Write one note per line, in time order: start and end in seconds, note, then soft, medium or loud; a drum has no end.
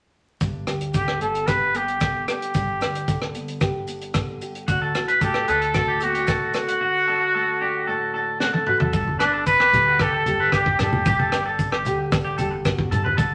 0.41 0.65 G1 medium
0.41 1.46 G2 medium
0.41 kick medium
0.41 closed hi-hat soft
0.41 maracas medium
0.67 1.17 D2 medium
0.67 1.47 G4 medium
0.67 cross-stick medium
0.67 closed hi-hat soft
0.67 maracas medium
0.81 closed hi-hat soft
0.93 1.99 D3 medium
0.93 1.19 G4 medium
0.93 kick medium
0.93 closed hi-hat soft
0.93 maracas medium
1.08 cross-stick medium
1.20 2.23 G1 medium
1.20 1.73 B3 medium
1.20 1.48 A4 medium
1.20 closed hi-hat soft
1.34 closed hi-hat soft
1.34 maracas soft
1.46 2.51 G2 soft
1.46 2.51 G4 medium
1.46 1.78 B4 medium
1.46 kick medium
1.46 cross-stick medium
1.46 closed hi-hat soft
1.46 maracas medium
1.74 2.51 B3 medium
1.74 2.28 G4 medium
1.74 closed hi-hat soft
1.74 maracas medium
1.88 closed hi-hat soft
2.00 3.07 D3 medium
2.00 kick medium
2.00 cross-stick medium
2.00 closed hi-hat soft
2.00 maracas medium
2.28 2.81 D4 medium
2.28 3.31 G4 medium
2.28 cross-stick medium
2.28 closed hi-hat soft
2.28 maracas medium
2.42 closed hi-hat soft
2.54 2.79 G1 medium
2.54 3.60 G2 medium
2.54 kick medium
2.54 closed hi-hat soft
2.54 maracas medium
2.81 3.30 D2 medium
2.81 4.69 D4 medium
2.81 cross-stick medium
2.81 closed hi-hat soft
2.81 maracas medium
2.95 closed hi-hat soft
3.08 4.13 D3 medium
3.08 kick medium
3.08 closed hi-hat soft
3.08 maracas medium
3.22 cross-stick medium
3.34 4.37 G1 medium
3.34 3.87 B3 medium
3.34 closed hi-hat soft
3.34 maracas medium
3.48 closed hi-hat soft
3.48 maracas soft
3.61 4.65 G2 medium
3.61 4.41 G4 medium
3.61 kick medium
3.61 cross-stick medium
3.61 closed hi-hat soft
3.61 maracas medium
3.87 4.65 B3 medium
3.87 closed hi-hat soft
3.87 maracas medium
4.01 closed hi-hat soft
4.14 4.66 D3 medium
4.14 kick medium
4.14 cross-stick medium
4.14 closed hi-hat soft
4.14 maracas medium
4.41 4.65 G4 medium
4.41 closed hi-hat soft
4.41 maracas medium
4.55 closed hi-hat soft
4.68 4.92 D2 medium
4.68 6.79 D3 medium
4.68 5.22 A3 soft
4.68 5.48 D4 medium
4.68 4.81 F#4 medium
4.68 4.95 F#4 medium
4.68 kick medium
4.68 closed hi-hat soft
4.68 maracas medium
4.82 5.07 A4 medium
4.95 5.44 A1 medium
4.95 5.75 F#4 medium
4.95 cross-stick medium
4.95 closed hi-hat soft
4.95 maracas medium
5.08 5.21 B4 medium
5.08 closed hi-hat soft
5.21 6.26 A3 medium
5.21 5.51 G4 medium
5.21 5.47 A4 medium
5.21 kick medium
5.21 closed hi-hat soft
5.21 maracas medium
5.34 cross-stick medium
5.48 6.51 D2 medium
5.48 6.02 D4 soft
5.48 6.02 A4 loud
5.48 5.61 B4 medium
5.48 closed hi-hat soft
5.48 maracas medium
5.61 5.87 A4 medium
5.61 closed hi-hat soft
5.61 maracas soft
5.74 6.81 A2 medium
5.74 6.78 F#4 medium
5.74 kick medium
5.74 cross-stick medium
5.74 closed hi-hat soft
5.74 maracas medium
5.88 6.13 G4 medium
6.00 6.15 B3 soft
6.00 6.51 F#4 medium
6.00 closed hi-hat medium
6.00 maracas medium
6.14 6.54 D4 soft
6.14 6.27 G4 medium
6.14 closed hi-hat soft
6.27 6.78 A3 medium
6.27 6.53 A4 medium
6.27 kick medium
6.27 cross-stick medium
6.27 closed hi-hat medium
6.27 maracas medium
6.53 7.08 D4 medium
6.53 8.37 F#4 medium
6.53 cross-stick medium
6.53 closed hi-hat soft
6.53 maracas medium
6.68 6.80 F#4 medium
6.68 closed hi-hat medium
6.80 9.72 D3 medium
6.80 7.06 F#4 medium
7.08 7.60 D4 medium
7.08 7.20 A4 medium
7.21 7.33 F#4 medium
7.34 8.40 A3 medium
7.34 7.60 A4 medium
7.61 7.87 D4 medium
7.61 7.86 G4 medium
7.87 8.94 A2 medium
7.87 8.14 D4 medium
7.87 8.12 A4 medium
8.14 8.91 D4 soft
8.14 8.39 A4 medium
8.40 8.91 A3 medium
8.40 8.53 F#4 medium
8.40 snare soft
8.53 8.66 A4 medium
8.53 high tom soft
8.67 8.91 F#4 medium
8.67 8.80 B4 medium
8.67 mid tom medium
8.80 8.92 A4 medium
8.80 floor tom medium
8.93 9.56 G1 medium
8.93 10.26 G2 medium
8.93 9.18 A4 medium
8.93 kick medium
8.93 low conga medium
8.93 maracas medium
9.07 high conga medium
9.19 9.44 D4 medium
9.19 10.01 D4 medium
9.19 9.32 B4 medium
9.19 cross-stick medium
9.19 closed hi-hat soft
9.19 maracas medium
9.34 9.46 A4 medium
9.46 10.03 B4 loud
9.46 9.59 B4 medium
9.46 kick medium
9.46 maracas loud
9.60 9.72 G1 medium
9.60 9.85 G4 medium
9.60 cross-stick medium
9.73 10.22 D2 medium
9.73 11.85 D3 medium
9.73 10.26 G4 medium
9.73 closed hi-hat medium
9.73 low conga medium
9.73 maracas medium
9.87 9.99 F#4 medium
9.99 10.54 D4 medium
9.99 10.13 G4 medium
9.99 10.52 A4 medium
9.99 kick medium
9.99 cross-stick medium
9.99 maracas medium
10.13 10.38 A4 medium
10.26 10.75 G1 medium
10.26 11.03 G2 medium
10.26 11.03 G4 medium
10.26 closed hi-hat soft
10.26 high conga medium
10.26 maracas medium
10.40 10.52 B4 medium
10.52 10.81 D4 medium
10.52 10.77 G4 medium
10.52 10.78 G4 medium
10.52 kick medium
10.52 cross-stick medium
10.52 maracas medium
10.66 kick medium
10.66 high conga medium
10.79 11.03 G2 loud
10.79 11.35 D4 medium
10.79 11.55 G4 medium
10.79 11.04 A4 medium
10.79 cross-stick medium
10.79 closed hi-hat soft
10.79 low conga medium
10.79 maracas medium
10.93 high conga medium
11.06 11.68 G1 medium
11.06 12.39 G2 medium
11.06 11.18 G4 medium
11.06 kick medium
11.06 low conga medium
11.06 maracas medium
11.19 11.31 A4 medium
11.19 high conga medium
11.32 12.14 D4 medium
11.32 11.45 G4 medium
11.32 cross-stick medium
11.32 closed hi-hat soft
11.32 maracas medium
11.46 11.71 A4 medium
11.59 kick medium
11.59 maracas medium
11.72 11.84 G1 medium
11.72 11.97 G4 medium
11.72 cross-stick medium
11.85 12.34 D2 medium
11.85 13.18 D3 medium
11.85 12.39 G4 medium
11.85 closed hi-hat soft
11.85 low conga medium
11.85 maracas medium
12.12 13.34 D4 medium
12.12 kick medium
12.12 cross-stick medium
12.12 maracas medium
12.25 12.37 G4 medium
12.38 12.87 G1 medium
12.38 13.15 G2 medium
12.38 13.16 G4 medium
12.38 12.51 A4 medium
12.38 closed hi-hat soft
12.38 high conga medium
12.38 maracas medium
12.51 muted clean electric guitar stroke medium
12.65 12.92 B2 medium
12.65 kick medium
12.65 cross-stick medium
12.65 maracas medium
12.79 kick medium
12.79 high conga medium
12.91 13.15 G2 loud
12.91 13.18 C3 medium
12.91 13.04 A4 medium
12.91 closed hi-hat soft
12.91 low conga medium
12.91 maracas medium
13.05 13.17 B4 medium
13.05 high conga medium
13.17 13.34 D2 medium
13.17 13.34 D3 medium
13.17 13.34 A4 medium
13.17 kick medium
13.17 low conga medium
13.17 maracas medium